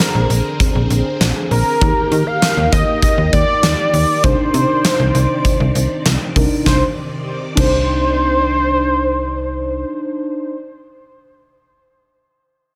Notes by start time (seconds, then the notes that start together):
Already playing: D3 C4 D4 G#4 A#4 C5
0.00 snare, closed hi-hat
0.15 A#1
0.30 A#1, closed hi-hat
0.60 kick, closed hi-hat
0.75 A#1
0.90 A#1, closed hi-hat
1.21 A#1, snare, closed hi-hat
1.51 A#1 A#4, open hi-hat
1.81 D#2 D#3 A#3 D#4 G4 A#4, kick, closed hi-hat
2.12 D#3, closed hi-hat
2.27 F5
2.42 snare, closed hi-hat
2.57 D#2
2.72 D#2 D#5, kick, closed hi-hat
3.02 D#5, kick, closed hi-hat
3.18 D#2
3.33 D#2 D5, kick, closed hi-hat
3.63 D#2, snare, closed hi-hat
3.93 D#2, open hi-hat
4.24 C2 C3 D4 D#4 C5 D5, kick, closed hi-hat
4.54 C3, closed hi-hat
4.85 snare, closed hi-hat
5.00 C2
5.15 C2, closed hi-hat
5.45 kick, closed hi-hat
5.60 C2
5.75 C2, closed hi-hat
6.06 C2, snare, closed hi-hat
6.36 C2 D4 D#4 A#4, kick, open hi-hat
6.64 C2 C3 D#3 D4 D#4 C5 D5, kick, snare
7.55 C2 D4 D#4 C5, kick, crash
7.59 C5